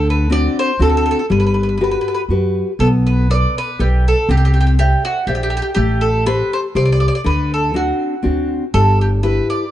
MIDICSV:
0, 0, Header, 1, 4, 480
1, 0, Start_track
1, 0, Key_signature, 1, "major"
1, 0, Tempo, 495868
1, 1261, Time_signature, 3, 2, 24, 8
1, 9400, End_track
2, 0, Start_track
2, 0, Title_t, "Mandolin"
2, 0, Program_c, 0, 25
2, 97, Note_on_c, 0, 71, 68
2, 309, Note_off_c, 0, 71, 0
2, 313, Note_on_c, 0, 74, 97
2, 568, Note_off_c, 0, 74, 0
2, 573, Note_on_c, 0, 72, 85
2, 790, Note_off_c, 0, 72, 0
2, 793, Note_on_c, 0, 69, 70
2, 855, Note_off_c, 0, 69, 0
2, 867, Note_on_c, 0, 69, 54
2, 928, Note_off_c, 0, 69, 0
2, 940, Note_on_c, 0, 69, 69
2, 1006, Note_off_c, 0, 69, 0
2, 1022, Note_on_c, 0, 69, 65
2, 1062, Note_off_c, 0, 69, 0
2, 1074, Note_on_c, 0, 69, 73
2, 1138, Note_off_c, 0, 69, 0
2, 1153, Note_on_c, 0, 69, 51
2, 1212, Note_off_c, 0, 69, 0
2, 1273, Note_on_c, 0, 71, 64
2, 1338, Note_off_c, 0, 71, 0
2, 1352, Note_on_c, 0, 71, 53
2, 1406, Note_off_c, 0, 71, 0
2, 1418, Note_on_c, 0, 71, 43
2, 1481, Note_off_c, 0, 71, 0
2, 1492, Note_on_c, 0, 71, 37
2, 1556, Note_off_c, 0, 71, 0
2, 1579, Note_on_c, 0, 71, 46
2, 1622, Note_off_c, 0, 71, 0
2, 1634, Note_on_c, 0, 71, 35
2, 1693, Note_off_c, 0, 71, 0
2, 1718, Note_on_c, 0, 71, 44
2, 1767, Note_off_c, 0, 71, 0
2, 1778, Note_on_c, 0, 71, 46
2, 1842, Note_off_c, 0, 71, 0
2, 1852, Note_on_c, 0, 71, 52
2, 1916, Note_off_c, 0, 71, 0
2, 1946, Note_on_c, 0, 71, 46
2, 2002, Note_off_c, 0, 71, 0
2, 2013, Note_on_c, 0, 71, 49
2, 2066, Note_off_c, 0, 71, 0
2, 2076, Note_on_c, 0, 71, 57
2, 2131, Note_off_c, 0, 71, 0
2, 2710, Note_on_c, 0, 69, 82
2, 2779, Note_off_c, 0, 69, 0
2, 2967, Note_on_c, 0, 71, 67
2, 3177, Note_off_c, 0, 71, 0
2, 3202, Note_on_c, 0, 74, 89
2, 3433, Note_off_c, 0, 74, 0
2, 3466, Note_on_c, 0, 71, 84
2, 3667, Note_off_c, 0, 71, 0
2, 3681, Note_on_c, 0, 67, 62
2, 3911, Note_off_c, 0, 67, 0
2, 3949, Note_on_c, 0, 69, 75
2, 4147, Note_off_c, 0, 69, 0
2, 4168, Note_on_c, 0, 67, 78
2, 4221, Note_off_c, 0, 67, 0
2, 4233, Note_on_c, 0, 67, 62
2, 4296, Note_off_c, 0, 67, 0
2, 4307, Note_on_c, 0, 67, 67
2, 4374, Note_off_c, 0, 67, 0
2, 4391, Note_on_c, 0, 67, 53
2, 4445, Note_off_c, 0, 67, 0
2, 4457, Note_on_c, 0, 67, 65
2, 4505, Note_off_c, 0, 67, 0
2, 4517, Note_on_c, 0, 67, 48
2, 4577, Note_off_c, 0, 67, 0
2, 4636, Note_on_c, 0, 67, 86
2, 4866, Note_off_c, 0, 67, 0
2, 4885, Note_on_c, 0, 66, 79
2, 5091, Note_off_c, 0, 66, 0
2, 5102, Note_on_c, 0, 67, 67
2, 5166, Note_off_c, 0, 67, 0
2, 5177, Note_on_c, 0, 67, 52
2, 5247, Note_off_c, 0, 67, 0
2, 5258, Note_on_c, 0, 67, 68
2, 5313, Note_off_c, 0, 67, 0
2, 5325, Note_on_c, 0, 67, 57
2, 5378, Note_off_c, 0, 67, 0
2, 5390, Note_on_c, 0, 67, 66
2, 5429, Note_off_c, 0, 67, 0
2, 5440, Note_on_c, 0, 67, 56
2, 5514, Note_off_c, 0, 67, 0
2, 5561, Note_on_c, 0, 67, 83
2, 5819, Note_on_c, 0, 69, 65
2, 5831, Note_off_c, 0, 67, 0
2, 6035, Note_off_c, 0, 69, 0
2, 6064, Note_on_c, 0, 71, 96
2, 6296, Note_off_c, 0, 71, 0
2, 6325, Note_on_c, 0, 72, 82
2, 6384, Note_off_c, 0, 72, 0
2, 6548, Note_on_c, 0, 74, 85
2, 6613, Note_off_c, 0, 74, 0
2, 6635, Note_on_c, 0, 74, 59
2, 6691, Note_off_c, 0, 74, 0
2, 6703, Note_on_c, 0, 74, 74
2, 6766, Note_off_c, 0, 74, 0
2, 6778, Note_on_c, 0, 74, 65
2, 6836, Note_off_c, 0, 74, 0
2, 6854, Note_on_c, 0, 74, 68
2, 6907, Note_off_c, 0, 74, 0
2, 6922, Note_on_c, 0, 74, 63
2, 6975, Note_off_c, 0, 74, 0
2, 7030, Note_on_c, 0, 71, 72
2, 7285, Note_off_c, 0, 71, 0
2, 7296, Note_on_c, 0, 69, 61
2, 7495, Note_off_c, 0, 69, 0
2, 7514, Note_on_c, 0, 66, 64
2, 8204, Note_off_c, 0, 66, 0
2, 8459, Note_on_c, 0, 69, 88
2, 8698, Note_off_c, 0, 69, 0
2, 8724, Note_on_c, 0, 67, 64
2, 8784, Note_off_c, 0, 67, 0
2, 8936, Note_on_c, 0, 71, 84
2, 9190, Note_off_c, 0, 71, 0
2, 9194, Note_on_c, 0, 74, 82
2, 9400, Note_off_c, 0, 74, 0
2, 9400, End_track
3, 0, Start_track
3, 0, Title_t, "Nylon-string guitar"
3, 0, Program_c, 1, 24
3, 0, Note_on_c, 1, 50, 55
3, 279, Note_off_c, 1, 50, 0
3, 286, Note_on_c, 1, 60, 44
3, 294, Note_on_c, 1, 62, 38
3, 299, Note_on_c, 1, 66, 54
3, 676, Note_off_c, 1, 60, 0
3, 680, Note_off_c, 1, 62, 0
3, 683, Note_off_c, 1, 66, 0
3, 766, Note_on_c, 1, 60, 42
3, 773, Note_on_c, 1, 62, 40
3, 780, Note_on_c, 1, 66, 49
3, 1157, Note_off_c, 1, 60, 0
3, 1159, Note_off_c, 1, 62, 0
3, 1165, Note_off_c, 1, 66, 0
3, 1255, Note_on_c, 1, 55, 53
3, 1725, Note_off_c, 1, 55, 0
3, 1749, Note_on_c, 1, 66, 41
3, 1751, Note_on_c, 1, 67, 40
3, 1755, Note_on_c, 1, 71, 43
3, 2131, Note_off_c, 1, 67, 0
3, 2132, Note_off_c, 1, 66, 0
3, 2135, Note_off_c, 1, 71, 0
3, 2229, Note_on_c, 1, 66, 38
3, 2238, Note_on_c, 1, 67, 30
3, 2238, Note_on_c, 1, 71, 39
3, 2614, Note_off_c, 1, 66, 0
3, 2618, Note_off_c, 1, 71, 0
3, 2620, Note_off_c, 1, 67, 0
3, 2715, Note_on_c, 1, 59, 47
3, 3180, Note_off_c, 1, 59, 0
3, 3194, Note_on_c, 1, 69, 38
3, 3195, Note_on_c, 1, 71, 41
3, 3197, Note_on_c, 1, 74, 42
3, 3577, Note_off_c, 1, 71, 0
3, 3577, Note_off_c, 1, 74, 0
3, 3578, Note_off_c, 1, 69, 0
3, 3670, Note_on_c, 1, 69, 39
3, 3682, Note_on_c, 1, 71, 38
3, 3686, Note_on_c, 1, 74, 46
3, 4053, Note_off_c, 1, 69, 0
3, 4061, Note_off_c, 1, 74, 0
3, 4062, Note_off_c, 1, 71, 0
3, 4155, Note_on_c, 1, 60, 58
3, 4615, Note_off_c, 1, 60, 0
3, 4638, Note_on_c, 1, 72, 37
3, 4638, Note_on_c, 1, 74, 39
3, 4645, Note_on_c, 1, 76, 46
3, 5014, Note_off_c, 1, 74, 0
3, 5015, Note_off_c, 1, 72, 0
3, 5019, Note_off_c, 1, 76, 0
3, 5110, Note_on_c, 1, 72, 36
3, 5114, Note_on_c, 1, 74, 36
3, 5119, Note_on_c, 1, 76, 49
3, 5489, Note_off_c, 1, 72, 0
3, 5491, Note_off_c, 1, 74, 0
3, 5494, Note_off_c, 1, 76, 0
3, 5582, Note_on_c, 1, 57, 63
3, 6045, Note_off_c, 1, 57, 0
3, 6058, Note_on_c, 1, 67, 48
3, 6062, Note_on_c, 1, 69, 39
3, 6070, Note_on_c, 1, 72, 48
3, 6443, Note_off_c, 1, 67, 0
3, 6444, Note_off_c, 1, 69, 0
3, 6445, Note_off_c, 1, 72, 0
3, 6534, Note_on_c, 1, 67, 44
3, 6539, Note_on_c, 1, 69, 35
3, 6540, Note_on_c, 1, 72, 42
3, 6920, Note_off_c, 1, 67, 0
3, 6922, Note_off_c, 1, 69, 0
3, 6923, Note_off_c, 1, 72, 0
3, 7011, Note_on_c, 1, 50, 60
3, 7480, Note_off_c, 1, 50, 0
3, 7491, Note_on_c, 1, 60, 43
3, 7497, Note_on_c, 1, 62, 39
3, 7502, Note_on_c, 1, 66, 40
3, 7880, Note_off_c, 1, 60, 0
3, 7881, Note_off_c, 1, 62, 0
3, 7886, Note_off_c, 1, 66, 0
3, 7962, Note_on_c, 1, 60, 38
3, 7971, Note_on_c, 1, 62, 38
3, 7975, Note_on_c, 1, 66, 41
3, 8355, Note_off_c, 1, 60, 0
3, 8361, Note_off_c, 1, 66, 0
3, 8362, Note_off_c, 1, 62, 0
3, 8459, Note_on_c, 1, 55, 55
3, 8928, Note_off_c, 1, 55, 0
3, 8936, Note_on_c, 1, 64, 48
3, 8939, Note_on_c, 1, 67, 35
3, 8944, Note_on_c, 1, 71, 48
3, 9325, Note_off_c, 1, 67, 0
3, 9326, Note_off_c, 1, 64, 0
3, 9329, Note_off_c, 1, 71, 0
3, 9400, End_track
4, 0, Start_track
4, 0, Title_t, "Upright bass"
4, 0, Program_c, 2, 32
4, 0, Note_on_c, 2, 38, 99
4, 444, Note_off_c, 2, 38, 0
4, 773, Note_on_c, 2, 38, 84
4, 1088, Note_off_c, 2, 38, 0
4, 1261, Note_on_c, 2, 31, 84
4, 1887, Note_off_c, 2, 31, 0
4, 2212, Note_on_c, 2, 42, 62
4, 2530, Note_off_c, 2, 42, 0
4, 2700, Note_on_c, 2, 35, 82
4, 3329, Note_off_c, 2, 35, 0
4, 3675, Note_on_c, 2, 35, 73
4, 3985, Note_off_c, 2, 35, 0
4, 4149, Note_on_c, 2, 36, 95
4, 4769, Note_off_c, 2, 36, 0
4, 5100, Note_on_c, 2, 34, 78
4, 5411, Note_off_c, 2, 34, 0
4, 5578, Note_on_c, 2, 33, 94
4, 6201, Note_off_c, 2, 33, 0
4, 6536, Note_on_c, 2, 36, 80
4, 6848, Note_off_c, 2, 36, 0
4, 7022, Note_on_c, 2, 38, 79
4, 7646, Note_off_c, 2, 38, 0
4, 7987, Note_on_c, 2, 38, 72
4, 8298, Note_off_c, 2, 38, 0
4, 8460, Note_on_c, 2, 31, 101
4, 9087, Note_off_c, 2, 31, 0
4, 9400, End_track
0, 0, End_of_file